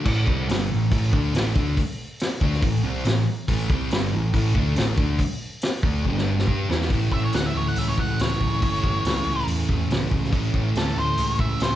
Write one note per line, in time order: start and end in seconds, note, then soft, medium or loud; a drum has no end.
0.04 0.26 A1 medium
0.04 0.26 A2 medium
0.04 0.26 E3 loud
0.04 0.27 A3 loud
0.04 kick medium
0.04 crash medium
0.26 0.47 C2 medium
0.26 0.48 C3 medium
0.26 0.48 G3 medium
0.26 0.48 C4 medium
0.26 kick loud
0.48 0.69 G1 medium
0.48 0.69 G2 medium
0.48 0.69 D3 loud
0.48 0.70 G3 loud
0.48 snare loud
0.48 open hi-hat medium
0.70 0.90 A1 medium
0.70 0.87 A2 medium
0.70 0.87 E3 medium
0.91 1.12 A1 medium
0.91 1.12 A2 loud
0.91 1.13 E3 loud
0.91 1.12 A3 loud
0.91 kick loud
0.91 open hi-hat medium
1.13 1.33 D2 loud
1.13 1.34 D3 medium
1.13 1.34 A3 medium
1.13 1.34 D4 medium
1.13 kick loud
1.34 1.54 A1 medium
1.34 1.55 A2 medium
1.34 1.55 E3 medium
1.34 1.55 A3 medium
1.34 snare loud
1.34 open hi-hat medium
1.55 1.76 D2 medium
1.55 1.76 D3 medium
1.55 1.77 A3 medium
1.55 1.77 D4 medium
1.55 kick loud
1.77 kick loud
1.77 open hi-hat medium
2.20 snare loud
2.20 open hi-hat medium
2.41 2.61 D2 medium
2.41 2.62 D3 medium
2.41 2.63 A3 medium
2.41 2.63 D4 loud
2.41 kick loud
2.53 snare soft
2.62 2.83 A1 medium
2.62 2.80 A2 medium
2.62 2.80 E3 medium
2.62 kick loud
2.62 open hi-hat medium
2.84 3.04 C2 medium
2.84 3.05 C3 medium
2.84 3.05 G3 medium
2.84 3.06 C4 loud
3.05 3.26 A1 medium
3.05 3.23 A2 medium
3.05 3.23 E3 medium
3.05 snare loud
3.05 open hi-hat soft
3.48 3.68 A1 medium
3.48 3.69 A2 medium
3.48 3.70 E3 loud
3.48 3.70 A3 medium
3.48 kick medium
3.48 open hi-hat medium
3.69 3.90 C2 medium
3.69 3.90 C3 medium
3.69 3.91 G3 loud
3.69 3.91 C4 loud
3.69 kick loud
3.91 4.12 G1 medium
3.91 4.12 G2 medium
3.91 4.12 D3 medium
3.91 4.13 G3 loud
3.91 snare loud
3.91 open hi-hat soft
4.13 4.33 A1 medium
4.13 4.30 A2 medium
4.13 4.30 E3 medium
4.34 4.54 A1 medium
4.34 4.54 A2 loud
4.34 4.55 E3 loud
4.34 4.54 A3 loud
4.34 kick loud
4.34 open hi-hat medium
4.55 4.75 D2 medium
4.55 4.76 D3 medium
4.55 4.76 A3 medium
4.55 4.77 D4 loud
4.55 kick loud
4.76 4.97 A1 medium
4.76 4.97 A2 medium
4.76 4.98 E3 medium
4.76 4.97 A3 loud
4.76 snare loud
4.76 open hi-hat medium
4.98 5.18 D2 medium
4.98 5.19 D3 medium
4.98 5.19 A3 medium
4.98 5.19 D4 loud
4.98 kick loud
5.19 kick medium
5.19 open hi-hat medium
5.61 snare loud
5.61 open hi-hat medium
5.83 6.03 D2 medium
5.83 6.04 D3 medium
5.83 6.06 A3 medium
5.83 6.05 D4 medium
5.83 kick loud
6.04 6.45 G1 medium
6.04 6.47 G2 loud
6.04 6.48 D3 loud
6.04 6.46 G3 loud
6.04 kick medium
6.17 snare medium
6.38 snare medium
6.47 6.68 G2 medium
6.47 6.69 G3 medium
6.47 6.69 D4 medium
6.47 6.69 G4 medium
6.47 kick medium
6.69 6.89 E2 medium
6.69 6.90 E3 medium
6.69 6.90 B3 medium
6.69 6.91 E4 medium
6.69 snare medium
6.81 snare medium
6.90 7.04 A1 medium
6.90 8.60 A2 medium
6.90 8.61 E3 medium
6.90 8.62 A3 medium
6.90 8.63 C#4 medium
6.90 8.64 E4 loud
6.90 kick loud
6.90 open hi-hat medium
7.12 7.26 A1 medium
7.12 7.23 E5 medium
7.12 kick medium
7.25 7.34 C#5 medium
7.33 7.47 D2 medium
7.33 7.44 F#5 medium
7.33 snare loud
7.33 open hi-hat soft
7.46 7.57 E5 medium
7.55 7.69 D2 medium
7.55 7.66 C#5 medium
7.68 7.78 F#5 medium
7.76 7.90 C#2 medium
7.76 7.88 E5 medium
7.76 open hi-hat medium
7.89 7.99 C#5 medium
7.98 8.11 C#2 medium
7.98 8.19 F#5 medium
7.98 kick medium
8.19 8.33 C#2 medium
8.19 9.45 C#5 medium
8.19 snare loud
8.19 open hi-hat medium
8.40 8.54 C#2 medium
8.40 kick medium
8.60 8.76 G1 medium
8.60 10.31 A2 medium
8.60 10.32 E3 medium
8.60 10.33 A3 loud
8.60 10.34 C#4 loud
8.60 kick loud
8.60 open hi-hat soft
8.65 10.35 E4 medium
8.84 8.97 G1 medium
8.84 kick medium
9.05 9.19 C#2 medium
9.05 snare loud
9.05 open hi-hat medium
9.26 9.40 C#2 medium
9.46 9.61 E2 medium
9.46 open hi-hat medium
9.69 9.83 E2 medium
9.69 kick medium
9.90 10.04 C#2 medium
9.90 snare loud
9.90 open hi-hat medium
10.11 10.25 C#2 medium
10.11 kick medium
10.24 snare soft
10.32 10.46 A1 medium
10.32 11.76 A2 medium
10.32 11.76 E3 medium
10.32 11.76 A3 loud
10.32 11.76 C#4 medium
10.32 11.76 E4 loud
10.32 kick loud
10.32 open hi-hat soft
10.54 10.68 A1 medium
10.54 kick medium
10.75 10.89 D2 medium
10.75 10.97 A4 medium
10.75 snare loud
10.75 open hi-hat medium
10.97 11.11 D2 medium
10.97 11.39 C5 medium
11.18 11.32 C#2 medium
11.18 open hi-hat medium
11.39 11.53 C#2 medium
11.39 11.61 E5 medium
11.39 kick medium
11.60 11.74 C#2 medium
11.60 11.76 C5 medium
11.60 snare loud
11.60 open hi-hat medium